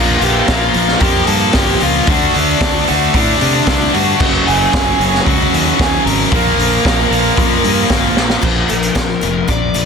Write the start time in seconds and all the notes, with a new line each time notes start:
Already playing: A#1 A#2 F3 A#3 F4 F5
0.21 A#1 G4 G5, open hi-hat
0.48 A#1 F4 F5, kick, snare, open hi-hat
0.73 A#1 A#2 F3 A#3, open hi-hat
0.88 snare
1.00 F2 A#2 F3 A#3 G4 G5, kick, open hi-hat
1.26 G2 A4 A5, open hi-hat
1.53 G1 G4 G5, kick, snare, open hi-hat
1.80 C#2 F4 F5, open hi-hat
2.07 D2 D3 A3 D4 F#4 F#5, kick, open hi-hat
2.34 D2 D4 D5, open hi-hat
2.61 D2, kick, snare, open hi-hat
2.85 D3 A3 D4 F#4 F#5, open hi-hat
2.90 D2
3.14 A2 D3 A3 D4 D5, kick, open hi-hat
3.39 C3 D4 D5, open hi-hat
3.54 D4 D5
3.67 C2, kick, snare, open hi-hat
3.93 G2 F#4 F#5, open hi-hat
4.20 F#1 F#2 C#3 F#3, kick, crash
4.47 F#1 G#4 G#5, open hi-hat
4.73 F#1, kick, snare, open hi-hat
4.99 F#1 F#2 C#3 F#3, open hi-hat
5.15 snare
5.26 C#2 F#2 C#3 F#3 F#4 F#5, kick, open hi-hat
5.53 D#2, open hi-hat
5.79 D#2 G#4 G#5, kick, snare, open hi-hat
6.05 G#1 A#4 A#5, open hi-hat
6.31 A#1 A#2 F3 A#3, kick, open hi-hat
6.58 A#1, open hi-hat
6.85 A#1, kick, snare, open hi-hat
7.10 A#1 A#2 F3 A#3, open hi-hat
7.36 F2 A#2 F3 A#3, kick, open hi-hat
7.64 G2, open hi-hat
7.90 G1, kick, snare, open hi-hat
8.17 A#1, snare
8.30 snare
8.42 A#1 A#2 D3 F3 A#3, kick, crash
8.69 A#1 A#2 D3 F3 A#4, closed hi-hat
8.83 closed hi-hat
8.95 A#1 A#2 D3 F3, kick, snare, closed hi-hat
9.21 F1 A#2 D3 F3, closed hi-hat
9.48 A#1 A#2 D3 F3 D5, kick, closed hi-hat
9.74 A#1 A#2 D3 F3, closed hi-hat